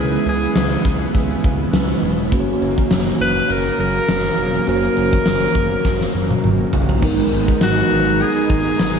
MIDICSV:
0, 0, Header, 1, 7, 480
1, 0, Start_track
1, 0, Tempo, 588235
1, 1895, Time_signature, 4, 2, 24, 8
1, 7340, End_track
2, 0, Start_track
2, 0, Title_t, "Alto saxophone"
2, 0, Program_c, 0, 65
2, 0, Note_on_c, 0, 68, 90
2, 223, Note_off_c, 0, 68, 0
2, 232, Note_on_c, 0, 68, 84
2, 911, Note_off_c, 0, 68, 0
2, 2622, Note_on_c, 0, 71, 106
2, 2861, Note_on_c, 0, 70, 99
2, 2873, Note_off_c, 0, 71, 0
2, 3098, Note_off_c, 0, 70, 0
2, 3102, Note_on_c, 0, 70, 116
2, 3786, Note_off_c, 0, 70, 0
2, 3827, Note_on_c, 0, 70, 108
2, 5228, Note_off_c, 0, 70, 0
2, 6226, Note_on_c, 0, 66, 88
2, 6702, Note_on_c, 0, 68, 94
2, 6714, Note_off_c, 0, 66, 0
2, 7340, Note_off_c, 0, 68, 0
2, 7340, End_track
3, 0, Start_track
3, 0, Title_t, "Tine electric piano"
3, 0, Program_c, 1, 4
3, 0, Note_on_c, 1, 56, 62
3, 0, Note_on_c, 1, 61, 61
3, 0, Note_on_c, 1, 64, 58
3, 0, Note_on_c, 1, 71, 71
3, 113, Control_c, 1, 64, 127
3, 1383, Note_off_c, 1, 56, 0
3, 1386, Note_off_c, 1, 61, 0
3, 1390, Note_off_c, 1, 64, 0
3, 1392, Note_off_c, 1, 71, 0
3, 1409, Note_on_c, 1, 56, 57
3, 1413, Note_on_c, 1, 61, 53
3, 1416, Note_on_c, 1, 64, 53
3, 1419, Note_on_c, 1, 71, 66
3, 1881, Note_off_c, 1, 61, 0
3, 1885, Note_on_c, 1, 58, 79
3, 1891, Note_on_c, 1, 61, 75
3, 1892, Note_off_c, 1, 56, 0
3, 1895, Note_off_c, 1, 64, 0
3, 1895, Note_off_c, 1, 71, 0
3, 1898, Note_on_c, 1, 66, 70
3, 1905, Note_on_c, 1, 71, 68
3, 1907, Control_c, 1, 64, 0
3, 1958, Note_off_c, 1, 71, 0
3, 1958, Note_on_c, 1, 73, 86
3, 2069, Control_c, 1, 64, 127
3, 3777, Note_off_c, 1, 58, 0
3, 3780, Note_off_c, 1, 61, 0
3, 3784, Note_off_c, 1, 66, 0
3, 3803, Note_on_c, 1, 58, 67
3, 3809, Note_on_c, 1, 61, 61
3, 3814, Note_off_c, 1, 73, 0
3, 3816, Note_on_c, 1, 66, 60
3, 3821, Note_on_c, 1, 72, 61
3, 3876, Note_off_c, 1, 72, 0
3, 3876, Note_on_c, 1, 73, 73
3, 5696, Note_off_c, 1, 58, 0
3, 5700, Note_off_c, 1, 61, 0
3, 5703, Note_off_c, 1, 66, 0
3, 5722, Note_on_c, 1, 56, 77
3, 5729, Note_on_c, 1, 59, 75
3, 5733, Note_off_c, 1, 73, 0
3, 5733, Note_on_c, 1, 63, 71
3, 5744, Note_on_c, 1, 70, 85
3, 5745, Control_c, 1, 64, 0
3, 5879, Control_c, 1, 64, 127
3, 7340, Note_off_c, 1, 56, 0
3, 7340, Note_off_c, 1, 59, 0
3, 7340, Note_off_c, 1, 63, 0
3, 7340, Note_off_c, 1, 70, 0
3, 7340, End_track
4, 0, Start_track
4, 0, Title_t, "Analog polysynth"
4, 0, Program_c, 2, 90
4, 5731, Note_on_c, 2, 63, 77
4, 5732, Note_on_c, 2, 56, 75
4, 5732, Note_on_c, 2, 71, 85
4, 7340, Note_off_c, 2, 56, 0
4, 7340, Note_off_c, 2, 63, 0
4, 7340, Note_off_c, 2, 71, 0
4, 7340, End_track
5, 0, Start_track
5, 0, Title_t, "Analog synth pad"
5, 0, Program_c, 3, 89
5, 0, Note_on_c, 3, 49, 77
5, 0, Note_on_c, 3, 56, 75
5, 0, Note_on_c, 3, 59, 78
5, 0, Note_on_c, 3, 64, 73
5, 1862, Note_off_c, 3, 64, 0
5, 1874, Note_off_c, 3, 56, 0
5, 1874, Note_off_c, 3, 59, 0
5, 1875, Note_off_c, 3, 49, 0
5, 1897, Note_on_c, 3, 54, 76
5, 1898, Note_on_c, 3, 49, 85
5, 1899, Note_on_c, 3, 58, 91
5, 5704, Note_off_c, 3, 49, 0
5, 5704, Note_off_c, 3, 54, 0
5, 5704, Note_off_c, 3, 58, 0
5, 5738, Note_on_c, 3, 82, 72
5, 5739, Note_on_c, 3, 59, 94
5, 5740, Note_on_c, 3, 56, 86
5, 5741, Note_on_c, 3, 63, 76
5, 7340, Note_off_c, 3, 56, 0
5, 7340, Note_off_c, 3, 59, 0
5, 7340, Note_off_c, 3, 63, 0
5, 7340, Note_off_c, 3, 82, 0
5, 7340, End_track
6, 0, Start_track
6, 0, Title_t, "Analog synth bass"
6, 0, Program_c, 4, 38
6, 0, Note_on_c, 4, 37, 108
6, 146, Note_off_c, 4, 37, 0
6, 212, Note_on_c, 4, 37, 94
6, 386, Note_off_c, 4, 37, 0
6, 452, Note_on_c, 4, 37, 99
6, 626, Note_off_c, 4, 37, 0
6, 695, Note_on_c, 4, 37, 94
6, 868, Note_off_c, 4, 37, 0
6, 936, Note_on_c, 4, 37, 92
6, 1108, Note_off_c, 4, 37, 0
6, 1177, Note_on_c, 4, 37, 97
6, 1349, Note_off_c, 4, 37, 0
6, 1412, Note_on_c, 4, 37, 97
6, 1586, Note_off_c, 4, 37, 0
6, 1651, Note_on_c, 4, 28, 95
6, 1894, Note_on_c, 4, 30, 98
6, 1907, Note_off_c, 4, 28, 0
6, 2067, Note_off_c, 4, 30, 0
6, 2133, Note_on_c, 4, 30, 97
6, 2307, Note_off_c, 4, 30, 0
6, 2371, Note_on_c, 4, 30, 108
6, 2546, Note_off_c, 4, 30, 0
6, 2611, Note_on_c, 4, 30, 100
6, 2785, Note_off_c, 4, 30, 0
6, 2849, Note_on_c, 4, 30, 103
6, 3024, Note_off_c, 4, 30, 0
6, 3088, Note_on_c, 4, 30, 99
6, 3264, Note_off_c, 4, 30, 0
6, 3333, Note_on_c, 4, 30, 94
6, 3507, Note_off_c, 4, 30, 0
6, 3576, Note_on_c, 4, 28, 90
6, 3748, Note_off_c, 4, 28, 0
6, 3816, Note_on_c, 4, 30, 111
6, 3989, Note_off_c, 4, 30, 0
6, 4056, Note_on_c, 4, 30, 94
6, 4229, Note_off_c, 4, 30, 0
6, 4292, Note_on_c, 4, 30, 111
6, 4466, Note_off_c, 4, 30, 0
6, 4531, Note_on_c, 4, 30, 93
6, 4705, Note_off_c, 4, 30, 0
6, 4773, Note_on_c, 4, 30, 93
6, 4947, Note_off_c, 4, 30, 0
6, 5014, Note_on_c, 4, 30, 100
6, 5187, Note_off_c, 4, 30, 0
6, 5255, Note_on_c, 4, 30, 94
6, 5428, Note_off_c, 4, 30, 0
6, 5495, Note_on_c, 4, 30, 90
6, 5668, Note_off_c, 4, 30, 0
6, 5732, Note_on_c, 4, 32, 102
6, 5906, Note_off_c, 4, 32, 0
6, 5975, Note_on_c, 4, 32, 94
6, 6148, Note_off_c, 4, 32, 0
6, 6215, Note_on_c, 4, 32, 97
6, 6388, Note_off_c, 4, 32, 0
6, 6455, Note_on_c, 4, 32, 98
6, 6723, Note_off_c, 4, 32, 0
6, 6935, Note_on_c, 4, 32, 104
6, 7108, Note_off_c, 4, 32, 0
6, 7175, Note_on_c, 4, 32, 94
6, 7340, Note_off_c, 4, 32, 0
6, 7340, End_track
7, 0, Start_track
7, 0, Title_t, "Drums"
7, 217, Note_on_c, 9, 42, 65
7, 299, Note_off_c, 9, 42, 0
7, 454, Note_on_c, 9, 38, 108
7, 454, Note_on_c, 9, 42, 74
7, 535, Note_off_c, 9, 38, 0
7, 536, Note_off_c, 9, 42, 0
7, 694, Note_on_c, 9, 36, 85
7, 697, Note_on_c, 9, 42, 70
7, 775, Note_off_c, 9, 36, 0
7, 779, Note_off_c, 9, 42, 0
7, 830, Note_on_c, 9, 42, 49
7, 912, Note_off_c, 9, 42, 0
7, 936, Note_on_c, 9, 36, 83
7, 938, Note_on_c, 9, 42, 93
7, 1017, Note_off_c, 9, 36, 0
7, 1019, Note_off_c, 9, 42, 0
7, 1178, Note_on_c, 9, 36, 89
7, 1179, Note_on_c, 9, 42, 70
7, 1259, Note_off_c, 9, 36, 0
7, 1261, Note_off_c, 9, 42, 0
7, 1413, Note_on_c, 9, 42, 85
7, 1416, Note_on_c, 9, 38, 118
7, 1495, Note_off_c, 9, 42, 0
7, 1497, Note_off_c, 9, 38, 0
7, 1655, Note_on_c, 9, 46, 74
7, 1737, Note_off_c, 9, 46, 0
7, 1894, Note_on_c, 9, 36, 113
7, 1897, Note_on_c, 9, 42, 93
7, 1976, Note_off_c, 9, 36, 0
7, 1979, Note_off_c, 9, 42, 0
7, 2138, Note_on_c, 9, 42, 63
7, 2220, Note_off_c, 9, 42, 0
7, 2267, Note_on_c, 9, 36, 78
7, 2349, Note_off_c, 9, 36, 0
7, 2372, Note_on_c, 9, 38, 109
7, 2373, Note_on_c, 9, 42, 72
7, 2454, Note_off_c, 9, 38, 0
7, 2455, Note_off_c, 9, 42, 0
7, 2613, Note_on_c, 9, 42, 69
7, 2694, Note_off_c, 9, 42, 0
7, 2855, Note_on_c, 9, 42, 93
7, 2936, Note_off_c, 9, 42, 0
7, 3092, Note_on_c, 9, 42, 72
7, 3173, Note_off_c, 9, 42, 0
7, 3331, Note_on_c, 9, 42, 86
7, 3334, Note_on_c, 9, 38, 110
7, 3413, Note_off_c, 9, 42, 0
7, 3415, Note_off_c, 9, 38, 0
7, 3573, Note_on_c, 9, 46, 74
7, 3655, Note_off_c, 9, 46, 0
7, 3812, Note_on_c, 9, 42, 93
7, 3893, Note_off_c, 9, 42, 0
7, 3943, Note_on_c, 9, 42, 47
7, 4025, Note_off_c, 9, 42, 0
7, 4053, Note_on_c, 9, 42, 66
7, 4135, Note_off_c, 9, 42, 0
7, 4185, Note_on_c, 9, 36, 82
7, 4267, Note_off_c, 9, 36, 0
7, 4289, Note_on_c, 9, 38, 99
7, 4290, Note_on_c, 9, 42, 72
7, 4371, Note_off_c, 9, 38, 0
7, 4372, Note_off_c, 9, 42, 0
7, 4528, Note_on_c, 9, 42, 70
7, 4530, Note_on_c, 9, 36, 85
7, 4609, Note_off_c, 9, 42, 0
7, 4612, Note_off_c, 9, 36, 0
7, 4772, Note_on_c, 9, 38, 54
7, 4773, Note_on_c, 9, 36, 82
7, 4854, Note_off_c, 9, 38, 0
7, 4855, Note_off_c, 9, 36, 0
7, 4904, Note_on_c, 9, 38, 55
7, 4986, Note_off_c, 9, 38, 0
7, 5145, Note_on_c, 9, 48, 65
7, 5227, Note_off_c, 9, 48, 0
7, 5254, Note_on_c, 9, 47, 81
7, 5335, Note_off_c, 9, 47, 0
7, 5492, Note_on_c, 9, 43, 100
7, 5573, Note_off_c, 9, 43, 0
7, 5621, Note_on_c, 9, 43, 83
7, 5703, Note_off_c, 9, 43, 0
7, 5730, Note_on_c, 9, 49, 92
7, 5732, Note_on_c, 9, 36, 119
7, 5812, Note_off_c, 9, 49, 0
7, 5814, Note_off_c, 9, 36, 0
7, 5975, Note_on_c, 9, 42, 67
7, 6057, Note_off_c, 9, 42, 0
7, 6106, Note_on_c, 9, 36, 84
7, 6187, Note_off_c, 9, 36, 0
7, 6210, Note_on_c, 9, 38, 109
7, 6211, Note_on_c, 9, 42, 80
7, 6212, Note_on_c, 9, 54, 54
7, 6292, Note_off_c, 9, 38, 0
7, 6293, Note_off_c, 9, 42, 0
7, 6293, Note_off_c, 9, 54, 0
7, 6448, Note_on_c, 9, 42, 78
7, 6529, Note_off_c, 9, 42, 0
7, 6691, Note_on_c, 9, 42, 96
7, 6772, Note_off_c, 9, 42, 0
7, 6933, Note_on_c, 9, 42, 70
7, 6935, Note_on_c, 9, 36, 93
7, 7015, Note_off_c, 9, 42, 0
7, 7017, Note_off_c, 9, 36, 0
7, 7174, Note_on_c, 9, 42, 89
7, 7175, Note_on_c, 9, 54, 68
7, 7177, Note_on_c, 9, 38, 120
7, 7256, Note_off_c, 9, 42, 0
7, 7257, Note_off_c, 9, 54, 0
7, 7258, Note_off_c, 9, 38, 0
7, 7340, End_track
0, 0, End_of_file